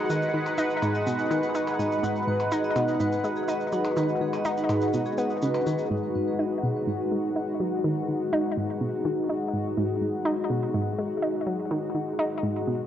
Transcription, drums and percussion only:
0, 0, Header, 1, 3, 480
1, 0, Start_track
1, 0, Tempo, 483871
1, 98, Time_signature, 4, 2, 24, 8
1, 12764, End_track
2, 0, Start_track
2, 0, Title_t, "Percussion blips"
2, 457, Note_on_c, 9, 77, 50
2, 556, Note_off_c, 9, 77, 0
2, 815, Note_on_c, 9, 77, 52
2, 914, Note_off_c, 9, 77, 0
2, 1661, Note_on_c, 9, 77, 48
2, 1760, Note_off_c, 9, 77, 0
2, 2381, Note_on_c, 9, 77, 50
2, 2480, Note_off_c, 9, 77, 0
2, 2739, Note_on_c, 9, 77, 53
2, 2838, Note_off_c, 9, 77, 0
2, 3816, Note_on_c, 9, 77, 68
2, 3915, Note_off_c, 9, 77, 0
2, 4298, Note_on_c, 9, 77, 53
2, 4397, Note_off_c, 9, 77, 0
2, 4655, Note_on_c, 9, 77, 53
2, 4754, Note_off_c, 9, 77, 0
2, 5498, Note_on_c, 9, 77, 49
2, 5597, Note_off_c, 9, 77, 0
2, 12764, End_track
3, 0, Start_track
3, 0, Title_t, "Drums"
3, 96, Note_on_c, 9, 82, 82
3, 195, Note_off_c, 9, 82, 0
3, 218, Note_on_c, 9, 82, 36
3, 318, Note_off_c, 9, 82, 0
3, 457, Note_on_c, 9, 82, 37
3, 556, Note_off_c, 9, 82, 0
3, 573, Note_on_c, 9, 82, 90
3, 673, Note_off_c, 9, 82, 0
3, 695, Note_on_c, 9, 82, 33
3, 794, Note_off_c, 9, 82, 0
3, 815, Note_on_c, 9, 82, 61
3, 914, Note_off_c, 9, 82, 0
3, 939, Note_on_c, 9, 82, 36
3, 1039, Note_off_c, 9, 82, 0
3, 1058, Note_on_c, 9, 82, 78
3, 1157, Note_off_c, 9, 82, 0
3, 1177, Note_on_c, 9, 82, 36
3, 1276, Note_off_c, 9, 82, 0
3, 1299, Note_on_c, 9, 82, 57
3, 1398, Note_off_c, 9, 82, 0
3, 1420, Note_on_c, 9, 82, 36
3, 1519, Note_off_c, 9, 82, 0
3, 1538, Note_on_c, 9, 82, 84
3, 1637, Note_off_c, 9, 82, 0
3, 1661, Note_on_c, 9, 82, 36
3, 1760, Note_off_c, 9, 82, 0
3, 1783, Note_on_c, 9, 82, 64
3, 1882, Note_off_c, 9, 82, 0
3, 1904, Note_on_c, 9, 82, 34
3, 2003, Note_off_c, 9, 82, 0
3, 2021, Note_on_c, 9, 82, 77
3, 2121, Note_off_c, 9, 82, 0
3, 2143, Note_on_c, 9, 82, 35
3, 2242, Note_off_c, 9, 82, 0
3, 2381, Note_on_c, 9, 82, 36
3, 2480, Note_off_c, 9, 82, 0
3, 2499, Note_on_c, 9, 82, 89
3, 2598, Note_off_c, 9, 82, 0
3, 2620, Note_on_c, 9, 82, 33
3, 2719, Note_off_c, 9, 82, 0
3, 2739, Note_on_c, 9, 82, 58
3, 2838, Note_off_c, 9, 82, 0
3, 2860, Note_on_c, 9, 82, 35
3, 2959, Note_off_c, 9, 82, 0
3, 2976, Note_on_c, 9, 82, 77
3, 3076, Note_off_c, 9, 82, 0
3, 3099, Note_on_c, 9, 82, 34
3, 3198, Note_off_c, 9, 82, 0
3, 3215, Note_on_c, 9, 82, 55
3, 3315, Note_off_c, 9, 82, 0
3, 3334, Note_on_c, 9, 82, 36
3, 3433, Note_off_c, 9, 82, 0
3, 3456, Note_on_c, 9, 82, 81
3, 3555, Note_off_c, 9, 82, 0
3, 3576, Note_on_c, 9, 82, 37
3, 3676, Note_off_c, 9, 82, 0
3, 3694, Note_on_c, 9, 82, 61
3, 3793, Note_off_c, 9, 82, 0
3, 3816, Note_on_c, 9, 82, 35
3, 3915, Note_off_c, 9, 82, 0
3, 3936, Note_on_c, 9, 82, 80
3, 4035, Note_off_c, 9, 82, 0
3, 4055, Note_on_c, 9, 82, 35
3, 4155, Note_off_c, 9, 82, 0
3, 4298, Note_on_c, 9, 82, 36
3, 4397, Note_off_c, 9, 82, 0
3, 4414, Note_on_c, 9, 82, 88
3, 4514, Note_off_c, 9, 82, 0
3, 4536, Note_on_c, 9, 82, 36
3, 4635, Note_off_c, 9, 82, 0
3, 4655, Note_on_c, 9, 82, 62
3, 4754, Note_off_c, 9, 82, 0
3, 4774, Note_on_c, 9, 82, 37
3, 4873, Note_off_c, 9, 82, 0
3, 4894, Note_on_c, 9, 82, 84
3, 4993, Note_off_c, 9, 82, 0
3, 5015, Note_on_c, 9, 82, 35
3, 5114, Note_off_c, 9, 82, 0
3, 5137, Note_on_c, 9, 82, 59
3, 5236, Note_off_c, 9, 82, 0
3, 5257, Note_on_c, 9, 82, 35
3, 5356, Note_off_c, 9, 82, 0
3, 5376, Note_on_c, 9, 82, 81
3, 5476, Note_off_c, 9, 82, 0
3, 5498, Note_on_c, 9, 82, 37
3, 5597, Note_off_c, 9, 82, 0
3, 5618, Note_on_c, 9, 82, 59
3, 5717, Note_off_c, 9, 82, 0
3, 5736, Note_on_c, 9, 82, 36
3, 5836, Note_off_c, 9, 82, 0
3, 12764, End_track
0, 0, End_of_file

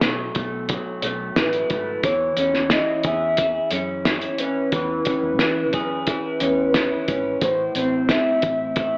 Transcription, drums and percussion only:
0, 0, Header, 1, 2, 480
1, 0, Start_track
1, 0, Key_signature, 4, "major"
1, 0, Tempo, 672646
1, 1453, Time_signature, 4, 2, 24, 8
1, 6406, End_track
2, 0, Start_track
2, 0, Title_t, "Drums"
2, 10, Note_on_c, 9, 38, 95
2, 12, Note_on_c, 9, 42, 80
2, 81, Note_off_c, 9, 38, 0
2, 83, Note_off_c, 9, 42, 0
2, 249, Note_on_c, 9, 42, 71
2, 257, Note_on_c, 9, 36, 89
2, 321, Note_off_c, 9, 42, 0
2, 328, Note_off_c, 9, 36, 0
2, 491, Note_on_c, 9, 42, 68
2, 498, Note_on_c, 9, 36, 83
2, 562, Note_off_c, 9, 42, 0
2, 569, Note_off_c, 9, 36, 0
2, 731, Note_on_c, 9, 42, 70
2, 802, Note_off_c, 9, 42, 0
2, 973, Note_on_c, 9, 38, 101
2, 973, Note_on_c, 9, 42, 81
2, 1044, Note_off_c, 9, 38, 0
2, 1044, Note_off_c, 9, 42, 0
2, 1091, Note_on_c, 9, 42, 47
2, 1162, Note_off_c, 9, 42, 0
2, 1212, Note_on_c, 9, 42, 58
2, 1217, Note_on_c, 9, 36, 96
2, 1283, Note_off_c, 9, 42, 0
2, 1288, Note_off_c, 9, 36, 0
2, 1452, Note_on_c, 9, 42, 87
2, 1454, Note_on_c, 9, 36, 112
2, 1523, Note_off_c, 9, 42, 0
2, 1525, Note_off_c, 9, 36, 0
2, 1689, Note_on_c, 9, 42, 61
2, 1760, Note_off_c, 9, 42, 0
2, 1812, Note_on_c, 9, 38, 33
2, 1883, Note_off_c, 9, 38, 0
2, 1926, Note_on_c, 9, 38, 106
2, 1928, Note_on_c, 9, 42, 75
2, 1997, Note_off_c, 9, 38, 0
2, 1999, Note_off_c, 9, 42, 0
2, 2165, Note_on_c, 9, 42, 65
2, 2174, Note_on_c, 9, 36, 91
2, 2237, Note_off_c, 9, 42, 0
2, 2246, Note_off_c, 9, 36, 0
2, 2406, Note_on_c, 9, 42, 75
2, 2415, Note_on_c, 9, 36, 77
2, 2477, Note_off_c, 9, 42, 0
2, 2486, Note_off_c, 9, 36, 0
2, 2645, Note_on_c, 9, 42, 72
2, 2716, Note_off_c, 9, 42, 0
2, 2892, Note_on_c, 9, 38, 102
2, 2892, Note_on_c, 9, 42, 83
2, 2964, Note_off_c, 9, 38, 0
2, 2964, Note_off_c, 9, 42, 0
2, 3008, Note_on_c, 9, 42, 46
2, 3079, Note_off_c, 9, 42, 0
2, 3129, Note_on_c, 9, 42, 64
2, 3200, Note_off_c, 9, 42, 0
2, 3369, Note_on_c, 9, 42, 79
2, 3372, Note_on_c, 9, 36, 102
2, 3440, Note_off_c, 9, 42, 0
2, 3444, Note_off_c, 9, 36, 0
2, 3605, Note_on_c, 9, 42, 67
2, 3616, Note_on_c, 9, 36, 95
2, 3677, Note_off_c, 9, 42, 0
2, 3688, Note_off_c, 9, 36, 0
2, 3846, Note_on_c, 9, 38, 97
2, 3848, Note_on_c, 9, 42, 69
2, 3918, Note_off_c, 9, 38, 0
2, 3920, Note_off_c, 9, 42, 0
2, 4088, Note_on_c, 9, 42, 70
2, 4095, Note_on_c, 9, 36, 88
2, 4160, Note_off_c, 9, 42, 0
2, 4166, Note_off_c, 9, 36, 0
2, 4329, Note_on_c, 9, 42, 73
2, 4335, Note_on_c, 9, 36, 82
2, 4401, Note_off_c, 9, 42, 0
2, 4407, Note_off_c, 9, 36, 0
2, 4569, Note_on_c, 9, 42, 65
2, 4640, Note_off_c, 9, 42, 0
2, 4811, Note_on_c, 9, 38, 109
2, 4811, Note_on_c, 9, 42, 85
2, 4883, Note_off_c, 9, 38, 0
2, 4883, Note_off_c, 9, 42, 0
2, 5052, Note_on_c, 9, 42, 64
2, 5056, Note_on_c, 9, 36, 86
2, 5123, Note_off_c, 9, 42, 0
2, 5127, Note_off_c, 9, 36, 0
2, 5291, Note_on_c, 9, 42, 90
2, 5293, Note_on_c, 9, 36, 111
2, 5362, Note_off_c, 9, 42, 0
2, 5365, Note_off_c, 9, 36, 0
2, 5530, Note_on_c, 9, 42, 68
2, 5602, Note_off_c, 9, 42, 0
2, 5771, Note_on_c, 9, 38, 102
2, 5773, Note_on_c, 9, 42, 81
2, 5843, Note_off_c, 9, 38, 0
2, 5845, Note_off_c, 9, 42, 0
2, 6010, Note_on_c, 9, 42, 68
2, 6017, Note_on_c, 9, 36, 102
2, 6081, Note_off_c, 9, 42, 0
2, 6088, Note_off_c, 9, 36, 0
2, 6250, Note_on_c, 9, 42, 70
2, 6257, Note_on_c, 9, 36, 82
2, 6322, Note_off_c, 9, 42, 0
2, 6328, Note_off_c, 9, 36, 0
2, 6406, End_track
0, 0, End_of_file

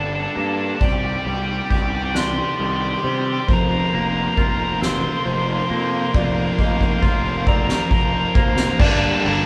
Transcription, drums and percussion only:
0, 0, Header, 1, 2, 480
1, 0, Start_track
1, 0, Tempo, 888889
1, 437, Time_signature, 6, 3, 24, 8
1, 5107, End_track
2, 0, Start_track
2, 0, Title_t, "Drums"
2, 195, Note_on_c, 9, 51, 58
2, 249, Note_off_c, 9, 51, 0
2, 436, Note_on_c, 9, 51, 73
2, 437, Note_on_c, 9, 36, 93
2, 490, Note_off_c, 9, 51, 0
2, 491, Note_off_c, 9, 36, 0
2, 677, Note_on_c, 9, 51, 64
2, 731, Note_off_c, 9, 51, 0
2, 921, Note_on_c, 9, 36, 74
2, 922, Note_on_c, 9, 51, 65
2, 975, Note_off_c, 9, 36, 0
2, 976, Note_off_c, 9, 51, 0
2, 1161, Note_on_c, 9, 38, 105
2, 1161, Note_on_c, 9, 51, 83
2, 1215, Note_off_c, 9, 38, 0
2, 1215, Note_off_c, 9, 51, 0
2, 1405, Note_on_c, 9, 51, 67
2, 1459, Note_off_c, 9, 51, 0
2, 1646, Note_on_c, 9, 51, 66
2, 1700, Note_off_c, 9, 51, 0
2, 1882, Note_on_c, 9, 36, 96
2, 1882, Note_on_c, 9, 51, 93
2, 1936, Note_off_c, 9, 36, 0
2, 1936, Note_off_c, 9, 51, 0
2, 2126, Note_on_c, 9, 51, 69
2, 2180, Note_off_c, 9, 51, 0
2, 2362, Note_on_c, 9, 36, 80
2, 2362, Note_on_c, 9, 51, 74
2, 2416, Note_off_c, 9, 36, 0
2, 2416, Note_off_c, 9, 51, 0
2, 2604, Note_on_c, 9, 38, 108
2, 2604, Note_on_c, 9, 51, 99
2, 2658, Note_off_c, 9, 38, 0
2, 2658, Note_off_c, 9, 51, 0
2, 2838, Note_on_c, 9, 51, 70
2, 2892, Note_off_c, 9, 51, 0
2, 3081, Note_on_c, 9, 51, 72
2, 3135, Note_off_c, 9, 51, 0
2, 3318, Note_on_c, 9, 36, 107
2, 3372, Note_off_c, 9, 36, 0
2, 3556, Note_on_c, 9, 36, 67
2, 3610, Note_off_c, 9, 36, 0
2, 3675, Note_on_c, 9, 36, 61
2, 3729, Note_off_c, 9, 36, 0
2, 3795, Note_on_c, 9, 36, 79
2, 3849, Note_off_c, 9, 36, 0
2, 4033, Note_on_c, 9, 36, 89
2, 4087, Note_off_c, 9, 36, 0
2, 4152, Note_on_c, 9, 38, 78
2, 4206, Note_off_c, 9, 38, 0
2, 4271, Note_on_c, 9, 36, 85
2, 4325, Note_off_c, 9, 36, 0
2, 4511, Note_on_c, 9, 36, 104
2, 4565, Note_off_c, 9, 36, 0
2, 4625, Note_on_c, 9, 38, 89
2, 4679, Note_off_c, 9, 38, 0
2, 4745, Note_on_c, 9, 49, 115
2, 4750, Note_on_c, 9, 36, 106
2, 4799, Note_off_c, 9, 49, 0
2, 4804, Note_off_c, 9, 36, 0
2, 4985, Note_on_c, 9, 51, 82
2, 5039, Note_off_c, 9, 51, 0
2, 5107, End_track
0, 0, End_of_file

